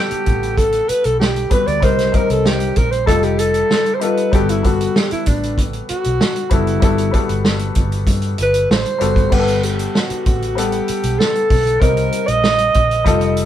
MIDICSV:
0, 0, Header, 1, 6, 480
1, 0, Start_track
1, 0, Key_signature, 1, "major"
1, 0, Tempo, 624350
1, 1406, Time_signature, 4, 2, 24, 8
1, 10343, End_track
2, 0, Start_track
2, 0, Title_t, "Alto saxophone"
2, 0, Program_c, 0, 65
2, 0, Note_on_c, 0, 67, 97
2, 443, Note_on_c, 0, 69, 96
2, 454, Note_off_c, 0, 67, 0
2, 683, Note_on_c, 0, 71, 96
2, 694, Note_off_c, 0, 69, 0
2, 811, Note_on_c, 0, 69, 88
2, 823, Note_off_c, 0, 71, 0
2, 919, Note_off_c, 0, 69, 0
2, 923, Note_on_c, 0, 67, 93
2, 1171, Note_on_c, 0, 71, 97
2, 1182, Note_off_c, 0, 67, 0
2, 1285, Note_on_c, 0, 74, 90
2, 1297, Note_off_c, 0, 71, 0
2, 1411, Note_on_c, 0, 72, 103
2, 1422, Note_off_c, 0, 74, 0
2, 1650, Note_on_c, 0, 70, 90
2, 1662, Note_off_c, 0, 72, 0
2, 1781, Note_on_c, 0, 69, 91
2, 1792, Note_off_c, 0, 70, 0
2, 1899, Note_on_c, 0, 67, 93
2, 1911, Note_off_c, 0, 69, 0
2, 2132, Note_on_c, 0, 70, 93
2, 2144, Note_off_c, 0, 67, 0
2, 2239, Note_on_c, 0, 72, 92
2, 2250, Note_off_c, 0, 70, 0
2, 2355, Note_off_c, 0, 72, 0
2, 2360, Note_on_c, 0, 69, 102
2, 2492, Note_on_c, 0, 67, 87
2, 2504, Note_off_c, 0, 69, 0
2, 2607, Note_on_c, 0, 69, 102
2, 2619, Note_off_c, 0, 67, 0
2, 3033, Note_on_c, 0, 72, 73
2, 3044, Note_off_c, 0, 69, 0
2, 3092, Note_on_c, 0, 71, 93
2, 3104, Note_off_c, 0, 72, 0
2, 3330, Note_off_c, 0, 71, 0
2, 3340, Note_on_c, 0, 67, 97
2, 3458, Note_on_c, 0, 64, 84
2, 3470, Note_off_c, 0, 67, 0
2, 3584, Note_on_c, 0, 66, 82
2, 3596, Note_off_c, 0, 64, 0
2, 3818, Note_on_c, 0, 67, 89
2, 3829, Note_off_c, 0, 66, 0
2, 3933, Note_off_c, 0, 67, 0
2, 3938, Note_on_c, 0, 64, 88
2, 4055, Note_on_c, 0, 62, 80
2, 4067, Note_off_c, 0, 64, 0
2, 4324, Note_off_c, 0, 62, 0
2, 4534, Note_on_c, 0, 66, 96
2, 5016, Note_on_c, 0, 64, 90
2, 5028, Note_off_c, 0, 66, 0
2, 5731, Note_off_c, 0, 64, 0
2, 6478, Note_on_c, 0, 71, 114
2, 6686, Note_off_c, 0, 71, 0
2, 6706, Note_on_c, 0, 72, 94
2, 7178, Note_on_c, 0, 71, 84
2, 7189, Note_off_c, 0, 72, 0
2, 7414, Note_on_c, 0, 67, 76
2, 7426, Note_off_c, 0, 71, 0
2, 7661, Note_on_c, 0, 66, 85
2, 7672, Note_off_c, 0, 67, 0
2, 8132, Note_on_c, 0, 67, 87
2, 8143, Note_off_c, 0, 66, 0
2, 8605, Note_on_c, 0, 69, 92
2, 8616, Note_off_c, 0, 67, 0
2, 9081, Note_on_c, 0, 70, 95
2, 9092, Note_off_c, 0, 69, 0
2, 9435, Note_on_c, 0, 75, 103
2, 9446, Note_off_c, 0, 70, 0
2, 10343, Note_off_c, 0, 75, 0
2, 10343, End_track
3, 0, Start_track
3, 0, Title_t, "Grand piano"
3, 0, Program_c, 1, 0
3, 0, Control_c, 1, 64, 127
3, 0, Note_on_c, 1, 55, 78
3, 0, Note_on_c, 1, 59, 73
3, 0, Note_on_c, 1, 69, 87
3, 0, Note_on_c, 1, 78, 72
3, 309, Note_off_c, 1, 55, 0
3, 314, Note_off_c, 1, 59, 0
3, 317, Note_off_c, 1, 78, 0
3, 321, Note_off_c, 1, 69, 0
3, 1153, Note_on_c, 1, 55, 66
3, 1161, Note_on_c, 1, 59, 62
3, 1171, Note_on_c, 1, 66, 60
3, 1178, Note_on_c, 1, 71, 74
3, 1308, Note_off_c, 1, 55, 0
3, 1311, Note_off_c, 1, 59, 0
3, 1316, Note_off_c, 1, 66, 0
3, 1320, Note_off_c, 1, 71, 0
3, 1387, Note_on_c, 1, 55, 72
3, 1398, Note_on_c, 1, 60, 61
3, 1403, Note_on_c, 1, 63, 63
3, 1413, Note_on_c, 1, 70, 74
3, 1416, Control_c, 1, 64, 0
3, 1531, Control_c, 1, 64, 127
3, 1545, Note_off_c, 1, 55, 0
3, 1550, Note_off_c, 1, 60, 0
3, 1553, Note_off_c, 1, 63, 0
3, 1558, Note_off_c, 1, 70, 0
3, 1630, Note_on_c, 1, 55, 67
3, 1636, Note_on_c, 1, 60, 64
3, 1647, Note_on_c, 1, 63, 59
3, 1652, Note_on_c, 1, 70, 75
3, 2231, Note_off_c, 1, 55, 0
3, 2234, Note_off_c, 1, 60, 0
3, 2240, Note_off_c, 1, 63, 0
3, 2242, Note_off_c, 1, 70, 0
3, 2353, Note_on_c, 1, 55, 78
3, 2360, Note_on_c, 1, 63, 73
3, 2371, Note_on_c, 1, 65, 72
3, 2377, Control_c, 1, 64, 0
3, 2379, Note_on_c, 1, 69, 83
3, 2495, Control_c, 1, 64, 127
3, 2937, Note_off_c, 1, 55, 0
3, 2940, Note_off_c, 1, 63, 0
3, 2946, Note_off_c, 1, 65, 0
3, 2949, Note_off_c, 1, 69, 0
3, 3071, Note_on_c, 1, 55, 68
3, 3081, Note_on_c, 1, 63, 67
3, 3090, Note_on_c, 1, 65, 63
3, 3097, Note_on_c, 1, 69, 77
3, 3228, Note_off_c, 1, 55, 0
3, 3233, Note_off_c, 1, 63, 0
3, 3237, Note_off_c, 1, 65, 0
3, 3240, Note_off_c, 1, 69, 0
3, 3317, Note_on_c, 1, 55, 74
3, 3324, Note_on_c, 1, 59, 66
3, 3334, Note_on_c, 1, 66, 69
3, 3337, Control_c, 1, 64, 0
3, 3341, Note_on_c, 1, 69, 77
3, 3454, Control_c, 1, 64, 127
3, 3471, Note_off_c, 1, 55, 0
3, 3474, Note_off_c, 1, 59, 0
3, 3479, Note_off_c, 1, 66, 0
3, 3482, Note_off_c, 1, 69, 0
3, 3560, Note_on_c, 1, 55, 72
3, 3570, Note_on_c, 1, 59, 65
3, 3577, Note_on_c, 1, 66, 62
3, 3583, Note_on_c, 1, 69, 75
3, 4156, Note_off_c, 1, 55, 0
3, 4161, Note_off_c, 1, 59, 0
3, 4165, Note_off_c, 1, 66, 0
3, 4168, Note_off_c, 1, 69, 0
3, 4994, Note_on_c, 1, 55, 70
3, 5003, Note_on_c, 1, 59, 67
3, 5009, Note_on_c, 1, 66, 63
3, 5018, Note_on_c, 1, 69, 77
3, 5148, Note_off_c, 1, 55, 0
3, 5153, Note_off_c, 1, 59, 0
3, 5156, Note_off_c, 1, 66, 0
3, 5160, Note_off_c, 1, 69, 0
3, 5228, Note_on_c, 1, 55, 72
3, 5241, Note_on_c, 1, 59, 65
3, 5247, Note_on_c, 1, 66, 68
3, 5257, Note_on_c, 1, 69, 82
3, 5386, Note_off_c, 1, 55, 0
3, 5392, Note_off_c, 1, 59, 0
3, 5395, Note_off_c, 1, 66, 0
3, 5400, Note_off_c, 1, 69, 0
3, 5468, Note_on_c, 1, 55, 73
3, 5478, Note_on_c, 1, 59, 67
3, 5489, Note_on_c, 1, 66, 64
3, 5496, Note_on_c, 1, 69, 78
3, 6070, Note_off_c, 1, 55, 0
3, 6075, Note_off_c, 1, 59, 0
3, 6080, Note_off_c, 1, 66, 0
3, 6083, Note_off_c, 1, 69, 0
3, 6907, Note_on_c, 1, 55, 74
3, 6916, Note_on_c, 1, 59, 67
3, 6925, Note_on_c, 1, 66, 67
3, 6933, Note_on_c, 1, 69, 78
3, 7064, Note_off_c, 1, 55, 0
3, 7068, Note_off_c, 1, 59, 0
3, 7073, Note_off_c, 1, 66, 0
3, 7077, Note_off_c, 1, 69, 0
3, 7149, Note_on_c, 1, 55, 64
3, 7157, Note_on_c, 1, 59, 59
3, 7164, Note_on_c, 1, 78, 63
3, 7175, Control_c, 1, 64, 0
3, 7176, Note_on_c, 1, 67, 60
3, 7220, Note_off_c, 1, 67, 0
3, 7222, Note_on_c, 1, 69, 75
3, 7288, Control_c, 1, 64, 127
3, 7749, Note_off_c, 1, 55, 0
3, 7753, Note_off_c, 1, 59, 0
3, 7756, Note_off_c, 1, 78, 0
3, 7785, Note_off_c, 1, 69, 0
3, 8113, Note_on_c, 1, 55, 69
3, 8120, Note_on_c, 1, 59, 65
3, 8131, Note_on_c, 1, 78, 63
3, 8137, Note_on_c, 1, 69, 77
3, 8709, Note_off_c, 1, 55, 0
3, 8713, Note_off_c, 1, 59, 0
3, 8718, Note_off_c, 1, 78, 0
3, 8721, Note_off_c, 1, 69, 0
3, 9069, Note_on_c, 1, 55, 67
3, 9077, Note_on_c, 1, 60, 65
3, 9089, Note_on_c, 1, 63, 64
3, 9090, Control_c, 1, 64, 0
3, 9095, Note_on_c, 1, 70, 72
3, 9230, Control_c, 1, 64, 127
3, 9666, Note_off_c, 1, 55, 0
3, 9670, Note_off_c, 1, 60, 0
3, 9676, Note_off_c, 1, 63, 0
3, 9679, Note_off_c, 1, 70, 0
3, 10028, Note_on_c, 1, 55, 87
3, 10037, Note_on_c, 1, 63, 76
3, 10041, Note_on_c, 1, 65, 76
3, 10049, Note_on_c, 1, 69, 96
3, 10050, Control_c, 1, 64, 0
3, 10172, Control_c, 1, 64, 127
3, 10343, Note_off_c, 1, 55, 0
3, 10343, Note_off_c, 1, 63, 0
3, 10343, Note_off_c, 1, 65, 0
3, 10343, Note_off_c, 1, 69, 0
3, 10343, End_track
4, 0, Start_track
4, 0, Title_t, "Fingered electric bass"
4, 0, Program_c, 2, 33
4, 213, Note_on_c, 2, 33, 85
4, 624, Note_off_c, 2, 33, 0
4, 809, Note_on_c, 2, 35, 83
4, 1119, Note_off_c, 2, 35, 0
4, 1286, Note_on_c, 2, 38, 80
4, 1406, Note_off_c, 2, 38, 0
4, 1406, Note_on_c, 2, 36, 83
4, 1614, Note_off_c, 2, 36, 0
4, 1768, Note_on_c, 2, 36, 81
4, 2079, Note_off_c, 2, 36, 0
4, 2132, Note_on_c, 2, 34, 85
4, 2337, Note_off_c, 2, 34, 0
4, 2366, Note_on_c, 2, 29, 91
4, 2781, Note_off_c, 2, 29, 0
4, 3333, Note_on_c, 2, 31, 90
4, 3745, Note_off_c, 2, 31, 0
4, 4058, Note_on_c, 2, 33, 74
4, 4468, Note_off_c, 2, 33, 0
4, 4659, Note_on_c, 2, 35, 85
4, 4757, Note_off_c, 2, 35, 0
4, 5008, Note_on_c, 2, 30, 82
4, 5215, Note_off_c, 2, 30, 0
4, 5250, Note_on_c, 2, 31, 96
4, 5456, Note_off_c, 2, 31, 0
4, 5609, Note_on_c, 2, 31, 80
4, 5919, Note_off_c, 2, 31, 0
4, 5972, Note_on_c, 2, 31, 95
4, 6177, Note_off_c, 2, 31, 0
4, 6205, Note_on_c, 2, 43, 102
4, 6412, Note_off_c, 2, 43, 0
4, 6450, Note_on_c, 2, 31, 80
4, 6655, Note_off_c, 2, 31, 0
4, 6690, Note_on_c, 2, 33, 82
4, 6792, Note_off_c, 2, 33, 0
4, 6929, Note_on_c, 2, 30, 86
4, 7044, Note_off_c, 2, 30, 0
4, 7044, Note_on_c, 2, 31, 88
4, 7148, Note_off_c, 2, 31, 0
4, 7170, Note_on_c, 2, 31, 97
4, 7581, Note_off_c, 2, 31, 0
4, 7892, Note_on_c, 2, 33, 84
4, 8302, Note_off_c, 2, 33, 0
4, 8486, Note_on_c, 2, 35, 83
4, 8588, Note_off_c, 2, 35, 0
4, 8847, Note_on_c, 2, 35, 82
4, 9051, Note_off_c, 2, 35, 0
4, 9089, Note_on_c, 2, 36, 81
4, 9292, Note_off_c, 2, 36, 0
4, 9443, Note_on_c, 2, 34, 76
4, 9752, Note_off_c, 2, 34, 0
4, 9808, Note_on_c, 2, 34, 88
4, 10011, Note_off_c, 2, 34, 0
4, 10042, Note_on_c, 2, 29, 100
4, 10343, Note_off_c, 2, 29, 0
4, 10343, End_track
5, 0, Start_track
5, 0, Title_t, "Muted fingered electric bass strokes"
5, 90, Note_on_c, 9, 29, 42
5, 167, Note_off_c, 9, 29, 0
5, 689, Note_on_c, 9, 29, 43
5, 765, Note_off_c, 9, 29, 0
5, 1164, Note_on_c, 9, 29, 42
5, 1241, Note_off_c, 9, 29, 0
5, 3938, Note_on_c, 9, 29, 45
5, 4015, Note_off_c, 9, 29, 0
5, 4539, Note_on_c, 9, 29, 45
5, 4616, Note_off_c, 9, 29, 0
5, 7769, Note_on_c, 9, 29, 44
5, 7846, Note_off_c, 9, 29, 0
5, 8375, Note_on_c, 9, 29, 44
5, 8452, Note_off_c, 9, 29, 0
5, 10343, End_track
6, 0, Start_track
6, 0, Title_t, "Drums"
6, 82, Note_on_c, 9, 42, 49
6, 159, Note_off_c, 9, 42, 0
6, 201, Note_on_c, 9, 42, 59
6, 208, Note_on_c, 9, 36, 79
6, 278, Note_off_c, 9, 42, 0
6, 285, Note_off_c, 9, 36, 0
6, 330, Note_on_c, 9, 42, 40
6, 406, Note_off_c, 9, 42, 0
6, 442, Note_on_c, 9, 36, 81
6, 446, Note_on_c, 9, 42, 77
6, 519, Note_off_c, 9, 36, 0
6, 522, Note_off_c, 9, 42, 0
6, 557, Note_on_c, 9, 42, 42
6, 634, Note_off_c, 9, 42, 0
6, 683, Note_on_c, 9, 42, 66
6, 760, Note_off_c, 9, 42, 0
6, 800, Note_on_c, 9, 42, 50
6, 877, Note_off_c, 9, 42, 0
6, 933, Note_on_c, 9, 38, 104
6, 1010, Note_off_c, 9, 38, 0
6, 1046, Note_on_c, 9, 42, 42
6, 1123, Note_off_c, 9, 42, 0
6, 1158, Note_on_c, 9, 42, 68
6, 1162, Note_on_c, 9, 36, 91
6, 1235, Note_off_c, 9, 42, 0
6, 1239, Note_off_c, 9, 36, 0
6, 1287, Note_on_c, 9, 42, 43
6, 1364, Note_off_c, 9, 42, 0
6, 1403, Note_on_c, 9, 36, 107
6, 1403, Note_on_c, 9, 42, 74
6, 1480, Note_off_c, 9, 36, 0
6, 1480, Note_off_c, 9, 42, 0
6, 1527, Note_on_c, 9, 42, 47
6, 1532, Note_on_c, 9, 38, 34
6, 1604, Note_off_c, 9, 42, 0
6, 1609, Note_off_c, 9, 38, 0
6, 1643, Note_on_c, 9, 42, 62
6, 1645, Note_on_c, 9, 36, 88
6, 1720, Note_off_c, 9, 42, 0
6, 1722, Note_off_c, 9, 36, 0
6, 1767, Note_on_c, 9, 42, 51
6, 1843, Note_off_c, 9, 42, 0
6, 1887, Note_on_c, 9, 38, 101
6, 1964, Note_off_c, 9, 38, 0
6, 1998, Note_on_c, 9, 42, 48
6, 2075, Note_off_c, 9, 42, 0
6, 2121, Note_on_c, 9, 42, 65
6, 2128, Note_on_c, 9, 36, 78
6, 2198, Note_off_c, 9, 42, 0
6, 2205, Note_off_c, 9, 36, 0
6, 2248, Note_on_c, 9, 42, 42
6, 2325, Note_off_c, 9, 42, 0
6, 2363, Note_on_c, 9, 36, 75
6, 2370, Note_on_c, 9, 42, 78
6, 2440, Note_off_c, 9, 36, 0
6, 2446, Note_off_c, 9, 42, 0
6, 2482, Note_on_c, 9, 42, 44
6, 2559, Note_off_c, 9, 42, 0
6, 2604, Note_on_c, 9, 42, 68
6, 2681, Note_off_c, 9, 42, 0
6, 2721, Note_on_c, 9, 42, 49
6, 2798, Note_off_c, 9, 42, 0
6, 2849, Note_on_c, 9, 38, 102
6, 2926, Note_off_c, 9, 38, 0
6, 2967, Note_on_c, 9, 42, 42
6, 3044, Note_off_c, 9, 42, 0
6, 3085, Note_on_c, 9, 42, 69
6, 3162, Note_off_c, 9, 42, 0
6, 3208, Note_on_c, 9, 42, 46
6, 3285, Note_off_c, 9, 42, 0
6, 3327, Note_on_c, 9, 42, 78
6, 3328, Note_on_c, 9, 36, 105
6, 3404, Note_off_c, 9, 42, 0
6, 3405, Note_off_c, 9, 36, 0
6, 3452, Note_on_c, 9, 42, 49
6, 3528, Note_off_c, 9, 42, 0
6, 3571, Note_on_c, 9, 36, 87
6, 3571, Note_on_c, 9, 42, 68
6, 3648, Note_off_c, 9, 36, 0
6, 3648, Note_off_c, 9, 42, 0
6, 3695, Note_on_c, 9, 42, 50
6, 3772, Note_off_c, 9, 42, 0
6, 3812, Note_on_c, 9, 38, 109
6, 3889, Note_off_c, 9, 38, 0
6, 3927, Note_on_c, 9, 42, 51
6, 4004, Note_off_c, 9, 42, 0
6, 4044, Note_on_c, 9, 42, 69
6, 4052, Note_on_c, 9, 36, 80
6, 4121, Note_off_c, 9, 42, 0
6, 4129, Note_off_c, 9, 36, 0
6, 4178, Note_on_c, 9, 42, 42
6, 4255, Note_off_c, 9, 42, 0
6, 4287, Note_on_c, 9, 36, 77
6, 4294, Note_on_c, 9, 42, 82
6, 4364, Note_off_c, 9, 36, 0
6, 4370, Note_off_c, 9, 42, 0
6, 4407, Note_on_c, 9, 42, 45
6, 4483, Note_off_c, 9, 42, 0
6, 4526, Note_on_c, 9, 42, 74
6, 4603, Note_off_c, 9, 42, 0
6, 4646, Note_on_c, 9, 42, 53
6, 4723, Note_off_c, 9, 42, 0
6, 4772, Note_on_c, 9, 38, 108
6, 4849, Note_off_c, 9, 38, 0
6, 4887, Note_on_c, 9, 42, 42
6, 4964, Note_off_c, 9, 42, 0
6, 5001, Note_on_c, 9, 42, 68
6, 5006, Note_on_c, 9, 36, 93
6, 5078, Note_off_c, 9, 42, 0
6, 5083, Note_off_c, 9, 36, 0
6, 5128, Note_on_c, 9, 42, 44
6, 5204, Note_off_c, 9, 42, 0
6, 5243, Note_on_c, 9, 42, 82
6, 5246, Note_on_c, 9, 36, 111
6, 5320, Note_off_c, 9, 42, 0
6, 5323, Note_off_c, 9, 36, 0
6, 5367, Note_on_c, 9, 42, 52
6, 5444, Note_off_c, 9, 42, 0
6, 5486, Note_on_c, 9, 42, 66
6, 5488, Note_on_c, 9, 36, 83
6, 5563, Note_off_c, 9, 42, 0
6, 5565, Note_off_c, 9, 36, 0
6, 5605, Note_on_c, 9, 42, 51
6, 5682, Note_off_c, 9, 42, 0
6, 5725, Note_on_c, 9, 38, 105
6, 5802, Note_off_c, 9, 38, 0
6, 5837, Note_on_c, 9, 42, 52
6, 5914, Note_off_c, 9, 42, 0
6, 5958, Note_on_c, 9, 42, 66
6, 5967, Note_on_c, 9, 36, 85
6, 6035, Note_off_c, 9, 42, 0
6, 6044, Note_off_c, 9, 36, 0
6, 6088, Note_on_c, 9, 42, 45
6, 6165, Note_off_c, 9, 42, 0
6, 6201, Note_on_c, 9, 36, 83
6, 6204, Note_on_c, 9, 42, 86
6, 6278, Note_off_c, 9, 36, 0
6, 6281, Note_off_c, 9, 42, 0
6, 6317, Note_on_c, 9, 42, 45
6, 6394, Note_off_c, 9, 42, 0
6, 6443, Note_on_c, 9, 42, 74
6, 6520, Note_off_c, 9, 42, 0
6, 6564, Note_on_c, 9, 42, 51
6, 6641, Note_off_c, 9, 42, 0
6, 6696, Note_on_c, 9, 38, 112
6, 6773, Note_off_c, 9, 38, 0
6, 6808, Note_on_c, 9, 42, 45
6, 6885, Note_off_c, 9, 42, 0
6, 6924, Note_on_c, 9, 42, 72
6, 7001, Note_off_c, 9, 42, 0
6, 7043, Note_on_c, 9, 36, 93
6, 7049, Note_on_c, 9, 42, 46
6, 7120, Note_off_c, 9, 36, 0
6, 7126, Note_off_c, 9, 42, 0
6, 7165, Note_on_c, 9, 49, 89
6, 7166, Note_on_c, 9, 36, 99
6, 7242, Note_off_c, 9, 49, 0
6, 7243, Note_off_c, 9, 36, 0
6, 7286, Note_on_c, 9, 42, 47
6, 7363, Note_off_c, 9, 42, 0
6, 7405, Note_on_c, 9, 42, 64
6, 7482, Note_off_c, 9, 42, 0
6, 7527, Note_on_c, 9, 42, 50
6, 7604, Note_off_c, 9, 42, 0
6, 7651, Note_on_c, 9, 38, 98
6, 7728, Note_off_c, 9, 38, 0
6, 7764, Note_on_c, 9, 42, 49
6, 7841, Note_off_c, 9, 42, 0
6, 7887, Note_on_c, 9, 42, 66
6, 7891, Note_on_c, 9, 36, 83
6, 7964, Note_off_c, 9, 42, 0
6, 7967, Note_off_c, 9, 36, 0
6, 8014, Note_on_c, 9, 42, 42
6, 8091, Note_off_c, 9, 42, 0
6, 8133, Note_on_c, 9, 42, 80
6, 8209, Note_off_c, 9, 42, 0
6, 8242, Note_on_c, 9, 42, 44
6, 8319, Note_off_c, 9, 42, 0
6, 8364, Note_on_c, 9, 42, 63
6, 8441, Note_off_c, 9, 42, 0
6, 8483, Note_on_c, 9, 42, 50
6, 8560, Note_off_c, 9, 42, 0
6, 8613, Note_on_c, 9, 38, 110
6, 8690, Note_off_c, 9, 38, 0
6, 8729, Note_on_c, 9, 42, 39
6, 8806, Note_off_c, 9, 42, 0
6, 8842, Note_on_c, 9, 46, 66
6, 8845, Note_on_c, 9, 36, 92
6, 8919, Note_off_c, 9, 46, 0
6, 8922, Note_off_c, 9, 36, 0
6, 8970, Note_on_c, 9, 42, 43
6, 9047, Note_off_c, 9, 42, 0
6, 9084, Note_on_c, 9, 36, 107
6, 9087, Note_on_c, 9, 42, 82
6, 9161, Note_off_c, 9, 36, 0
6, 9163, Note_off_c, 9, 42, 0
6, 9202, Note_on_c, 9, 42, 51
6, 9278, Note_off_c, 9, 42, 0
6, 9321, Note_on_c, 9, 42, 65
6, 9398, Note_off_c, 9, 42, 0
6, 9440, Note_on_c, 9, 42, 50
6, 9517, Note_off_c, 9, 42, 0
6, 9561, Note_on_c, 9, 38, 102
6, 9638, Note_off_c, 9, 38, 0
6, 9675, Note_on_c, 9, 42, 50
6, 9751, Note_off_c, 9, 42, 0
6, 9797, Note_on_c, 9, 42, 65
6, 9805, Note_on_c, 9, 36, 81
6, 9874, Note_off_c, 9, 42, 0
6, 9882, Note_off_c, 9, 36, 0
6, 9925, Note_on_c, 9, 42, 43
6, 10002, Note_off_c, 9, 42, 0
6, 10039, Note_on_c, 9, 36, 80
6, 10042, Note_on_c, 9, 42, 85
6, 10116, Note_off_c, 9, 36, 0
6, 10119, Note_off_c, 9, 42, 0
6, 10154, Note_on_c, 9, 42, 47
6, 10231, Note_off_c, 9, 42, 0
6, 10276, Note_on_c, 9, 42, 68
6, 10343, Note_off_c, 9, 42, 0
6, 10343, End_track
0, 0, End_of_file